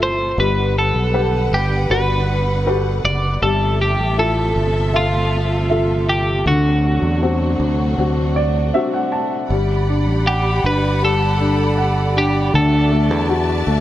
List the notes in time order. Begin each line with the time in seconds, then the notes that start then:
Already playing: G1 C3 F3 G3 A3 E4 F4 A4 E5
0.03 C5
0.38 G1 D3 G3 B3 B4 F#5
0.78 A4
0.94 B1
1.14 G4 B4 F#5
1.52 G1 G4
1.90 G1 F#4 G4 B4
2.66 F#4 G4 B4
2.72 A4
3.04 F#1 D5
3.42 G1 C3 F3 G3 A3 A4 E5
3.81 G4
3.99 A1
4.17 E4 F4 A4
4.56 G1
4.94 F4 A4 E5
5.70 F4 A4 E5
6.09 G4
6.46 D2 D3 F#3 A3 D4 F#4
7.02 E2
7.22 C4 D4 F#4
7.60 D2
7.98 D2 C4 D4 F#4
8.36 D5
8.74 C4 D4 F#4 E5
8.94 F#5
9.12 A5
9.49 G1 G3 G4 D5 F#5 B5
9.89 D4
10.08 A1
10.26 G4 F#5
10.64 G1 D4 B4
11.02 G3 A4
11.40 D4
11.78 F#5
12.16 D4 G4
12.54 D2 D3 F#4 A4 E5 A5
12.92 A3
13.11 E2
13.29 F#4
13.67 D2 A3